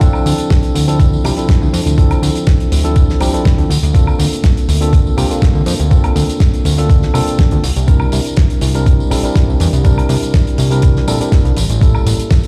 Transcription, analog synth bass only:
0.26 0.34 D2 loud
0.75 1.17 D2 medium
1.24 1.32 C2 medium
1.62 1.69 D2 loud
1.73 1.81 F2 loud
1.86 2.15 D2 medium
2.22 2.30 D2 loud
2.72 3.14 D2 medium
3.21 3.29 C2 medium
3.58 3.65 D2 medium
3.70 3.78 D2 loud
3.83 4.12 D2 medium
4.19 4.27 D2 loud
4.68 5.10 D2 medium
5.17 5.26 C2 medium
5.55 5.62 D2 medium
5.66 5.75 F2 loud
5.80 6.09 D2 medium
6.16 6.24 D2 loud
6.65 7.07 D2 medium
7.14 7.22 C2 medium
7.52 7.59 D2 loud
7.64 7.72 C2 loud
7.76 8.06 C2 medium
8.13 8.21 C2 loud
8.62 9.04 C2 medium
9.11 9.19 A#1 medium
9.48 9.56 C2 medium
9.60 9.68 E2 loud
9.73 10.02 C2 medium
10.09 10.17 C2 loud
10.58 11.00 C2 medium
11.08 11.16 A#1 medium
11.45 11.52 C2 medium
11.57 11.65 A1 loud
11.70 11.99 A1 medium
12.06 12.14 A1 loud

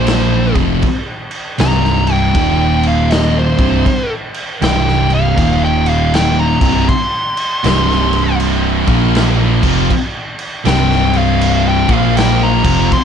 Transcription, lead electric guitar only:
0.00 0.55 C5 loud
1.61 2.12 A#5 medium
2.12 2.84 G5 medium
2.88 3.12 F5 medium
3.12 3.36 D#5 medium
3.39 4.11 C5 medium
4.63 5.11 G5 loud
5.15 5.63 F5 medium
5.65 5.89 G5 loud
5.89 6.13 F5 medium
6.15 6.39 G5 medium
6.40 6.88 A#5 medium
6.89 8.36 C6 loud
10.67 11.15 G5 loud
11.17 11.66 F5 medium
11.68 11.93 G5 loud
11.93 12.17 F5 loud
12.17 12.41 G5 loud
12.43 12.91 A#5 medium
12.93 13.04 C6 loud

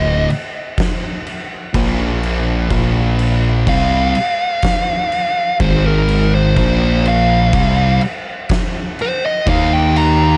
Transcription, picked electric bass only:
0.00 0.26 D1 medium
1.75 2.67 A#1 loud
2.71 3.63 A#1 loud
3.67 4.12 C2 loud
5.60 6.53 G#1 loud
6.57 7.49 A#1 loud
7.53 7.98 C2 medium
9.47 10.37 D#2 loud

